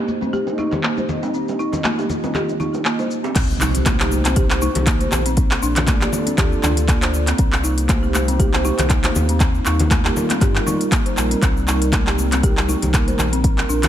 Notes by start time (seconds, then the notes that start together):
Already playing: A#3 D#4 G4 C5 D#5
0.08 high conga, shaker
0.21 C4, low bongo, high conga, shaker
0.33 G4, high conga, shaker
0.47 low bongo, shaker
0.58 D#4, high bongo, high conga, shaker
0.71 low bongo, low conga, shaker
0.83 A#3, clap, shaker
0.97 C5, low bongo, high conga, shaker
1.09 low conga, shaker
1.23 C4, low bongo, shaker
1.34 C4 F4, shaker
1.48 low bongo, shaker
1.59 D#4, shaker
1.73 high bongo, low bongo, low conga, shaker
1.84 A#3, clap, high conga, shaker
1.98 G4, low bongo, shaker
2.09 high conga, low conga, shaker
2.24 C4, low bongo, high conga, shaker
2.34 G4, clap, low conga, shaker
2.49 low bongo, shaker
2.60 D#4, high conga, low conga, shaker
2.74 low bongo, shaker
2.85 A#3, clap, shaker
2.99 C5, low bongo, shaker
3.11 shaker
3.24 C4, high bongo, low bongo, shaker
3.36 C2 A#3 C4 D#4 G4 C5, kick, clap, closed hi-hat, crash, impact, shaker
3.50 shaker
3.61 D#4, clap, shaker
3.75 closed hi-hat, shaker
3.86 A#3, kick, clap, closed hi-hat, high conga, shaker
4.00 G4, clap, shaker
4.12 high conga, shaker
4.25 C4, clap, closed hi-hat, high conga, shaker
4.36 G4, kick, closed hi-hat, high conga, shaker
4.50 clap, shaker
4.62 D#4, high conga, shaker
4.75 C2, closed hi-hat, low conga, shaker
4.87 A#3, kick, clap, closed hi-hat, shaker
5.01 C5, closed hi-hat, high conga, shaker
5.12 A#1, clap, low conga, shaker
5.26 C4, closed hi-hat, shaker
5.37 C4 D4 F4 A4 D5, kick, closed hi-hat, shaker
5.51 clap, shaker
5.63 A#1 D4, shaker
5.76 clap, closed hi-hat, low conga, shaker
5.87 A#3, kick, clap, closed hi-hat, high conga, shaker
6.01 G4, clap, shaker
6.12 high conga, low conga, shaker
6.27 C4, closed hi-hat, high conga, shaker
6.38 D2 G4, kick, clap, closed hi-hat, low conga, shaker
6.52 shaker
6.63 D2 D4, clap, high conga, low conga, shaker
6.77 closed hi-hat, shaker
6.88 A#3, kick, clap, closed hi-hat, shaker
7.02 C5, clap, closed hi-hat, shaker
7.14 shaker
7.27 C4, clap, closed hi-hat, shaker
7.38 C2 C4 D#4 G4 C5, kick, closed hi-hat, shaker
7.52 clap, shaker
7.64 D#4, shaker
7.78 closed hi-hat, shaker
7.89 A#3, kick, clap, closed hi-hat, high conga, shaker
8.03 G4, shaker
8.14 clap, high conga, shaker
8.28 C4, closed hi-hat, high conga, shaker
8.39 G4, kick, closed hi-hat, high conga, shaker
8.53 clap, shaker
8.64 D#4, high conga, shaker
8.79 C2, clap, closed hi-hat, low conga, shaker
8.90 A#3, kick, clap, closed hi-hat, shaker
9.04 C5, clap, closed hi-hat, high conga, shaker
9.15 D#2, low conga, shaker
9.29 C4, closed hi-hat, shaker
9.40 G3 C4 F4 A#4, kick, clap, closed hi-hat, shaker
9.55 shaker
9.66 D#2 D#4, clap, shaker
9.79 closed hi-hat, low conga, shaker
9.91 A#3, kick, clap, closed hi-hat, high conga, shaker
10.05 G4, clap, shaker
10.16 high conga, low conga, shaker
10.30 C4, clap, closed hi-hat, high conga, shaker
10.41 G2 G4, kick, clap, closed hi-hat, low conga, shaker
10.55 clap, shaker
10.66 D#4, high conga, low conga, shaker
10.81 closed hi-hat, shaker
10.92 A#3, kick, clap, closed hi-hat, shaker
11.06 C5, closed hi-hat, shaker
11.17 A#1, clap, shaker
11.31 C4, closed hi-hat, shaker
11.42 C2 C4, kick, clap, closed hi-hat, shaker
11.57 shaker
11.68 D#4, clap, shaker
11.82 closed hi-hat, shaker
11.92 A#3, kick, clap, closed hi-hat, high conga, shaker
12.07 G4, clap, shaker
12.18 high conga, shaker
12.32 C4, clap, closed hi-hat, high conga, shaker
12.43 G4, kick, closed hi-hat, high conga, shaker
12.57 clap, shaker
12.68 D#4, high conga, shaker
12.82 C2, closed hi-hat, low conga, shaker
12.94 A#3, kick, clap, closed hi-hat, shaker
13.08 C5, closed hi-hat, high conga, shaker
13.18 A#1, clap, low conga, shaker
13.33 C4, closed hi-hat, shaker
13.44 C4 D4 F4, kick, closed hi-hat, shaker
13.58 clap, shaker
13.69 A#1 D4, shaker
13.83 clap, closed hi-hat, low conga, shaker